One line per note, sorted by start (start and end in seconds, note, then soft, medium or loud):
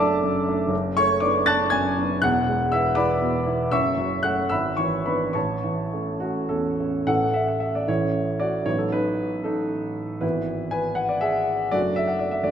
0.00 0.67 F#1 medium
0.00 0.74 F#3 medium
0.00 0.48 A3 medium
0.00 0.49 D4 medium
0.00 0.74 D5 medium
0.00 0.74 E5 medium
0.00 0.74 A5 medium
0.00 0.75 D6 loud
0.00 0.74 E6 loud
0.24 0.63 F#2 medium
0.48 0.70 A3 soft
0.48 0.70 D4 medium
0.69 2.17 F#1 medium
0.97 1.37 A3 medium
0.97 1.20 C#5 medium
0.97 1.21 C#6 loud
1.20 1.44 B3 medium
1.20 1.44 D4 medium
1.20 1.45 D5 medium
1.20 1.46 D6 medium
1.46 1.70 B3 soft
1.46 1.70 D4 medium
1.46 1.71 A5 medium
1.46 1.70 F#6 medium
1.46 1.72 A6 loud
1.70 2.13 F#2 medium
1.70 2.19 G#5 medium
1.70 2.22 G#6 loud
1.98 2.20 B3 soft
1.98 2.21 D4 medium
2.22 3.67 E1 medium
2.22 3.68 E2 medium
2.22 2.69 F#5 medium
2.22 2.71 F#6 loud
2.48 2.87 G#3 medium
2.72 2.94 B3 medium
2.72 2.95 E4 medium
2.72 2.95 E5 medium
2.72 2.96 E6 medium
2.95 3.19 B3 medium
2.95 3.19 E4 medium
2.95 3.67 D5 medium
2.95 3.67 B5 medium
2.95 3.71 D6 medium
3.22 3.62 B2 medium
3.46 3.69 B3 soft
3.46 3.69 E4 medium
3.71 4.48 F#1 medium
3.71 4.48 F#2 medium
3.71 4.20 E5 medium
3.71 4.20 C#6 medium
3.71 4.23 E6 medium
3.97 4.39 F#3 soft
4.23 4.48 A3 soft
4.23 4.48 C#4 soft
4.23 4.49 F#5 medium
4.23 4.50 F#6 medium
4.49 5.32 G#1 medium
4.49 4.76 E5 medium
4.49 4.76 B5 medium
4.49 4.77 E6 medium
4.77 5.23 E3 soft
4.77 5.04 C#5 medium
4.77 5.05 C#6 medium
5.06 5.33 B3 soft
5.06 5.33 D4 soft
5.06 5.33 B4 soft
5.06 5.35 B5 medium
5.33 7.04 A1 soft
5.33 6.18 C#5 soft
5.33 6.18 A5 soft
5.33 6.21 C#6 medium
5.64 6.10 E3 soft
5.93 6.19 A3 soft
5.93 6.19 C#4 soft
6.20 6.48 A3 soft
6.20 6.48 C#4 soft
6.20 6.50 F#4 medium
6.49 6.97 E2 soft
6.49 6.79 C#4 soft
6.49 7.07 A4 medium
6.80 7.05 A3 soft
6.80 7.05 C#4 soft
7.07 7.85 A1 soft
7.07 7.85 E3 soft
7.07 7.85 A3 soft
7.07 7.86 C#4 soft
7.07 7.33 A4 medium
7.07 7.34 F#5 medium
7.34 7.48 E5 medium
7.48 7.61 F#5 soft
7.60 7.74 E5 medium
7.75 7.88 D5 medium
7.88 8.63 A1 soft
7.88 8.63 E3 soft
7.88 8.64 A3 soft
7.88 8.64 C#4 soft
7.88 8.36 E4 medium
7.88 8.40 C#5 medium
8.39 8.64 F#4 medium
8.39 8.66 D5 medium
8.66 10.19 A1 soft
8.66 10.19 F#3 soft
8.66 10.19 B3 soft
8.66 8.91 D#4 soft
8.66 8.79 C#5 medium
8.78 8.92 A4 soft
8.92 9.42 D#4 medium
8.92 9.46 B4 medium
9.44 9.69 D#4 soft
9.44 9.71 A4 medium
10.21 11.68 G#1 soft
10.21 11.68 E3 soft
10.21 11.69 B3 soft
10.21 10.69 E4 medium
10.21 10.71 B4 medium
10.71 10.96 B4 medium
10.71 10.97 G#5 medium
10.95 11.09 F#5 medium
11.09 11.22 D5 medium
11.21 11.69 G#4 medium
11.21 11.72 E5 medium
11.71 12.42 F#1 soft
11.71 12.43 F#3 soft
11.71 12.43 A3 soft
11.71 12.43 D4 soft
11.71 11.96 F#4 medium
11.71 11.97 D5 medium
11.96 12.09 E5 medium
12.07 12.20 F#5 medium
12.19 12.32 D5 medium
12.31 12.44 E5 medium
12.44 12.51 F#1 soft
12.44 12.51 F#3 soft
12.44 12.51 A3 soft
12.44 12.51 D4 soft
12.44 12.51 F#4 medium
12.44 12.51 D5 medium